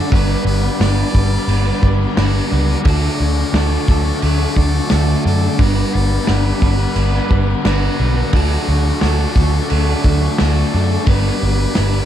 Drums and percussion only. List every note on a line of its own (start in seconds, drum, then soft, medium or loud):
0.12 kick loud
0.12 crash medium
0.81 snare loud
0.81 crash medium
1.15 kick medium
1.49 crash medium
1.83 kick medium
2.17 snare loud
2.17 crash medium
2.85 kick loud
2.85 crash medium
3.54 snare loud
3.54 crash medium
3.88 kick medium
3.88 snare soft
4.22 crash medium
4.56 kick medium
4.90 snare loud
4.90 crash medium
5.59 kick loud
5.59 crash medium
6.27 snare loud
6.27 crash medium
6.62 kick medium
6.96 crash medium
7.31 kick medium
7.65 snare loud
7.65 crash medium
8.33 kick loud
8.33 crash medium
9.01 snare loud
9.01 crash medium
9.36 kick medium
9.36 snare soft
9.70 crash medium
10.04 kick medium
10.38 snare loud
10.38 crash medium
11.06 kick loud
11.06 crash medium
11.75 snare loud
11.75 crash medium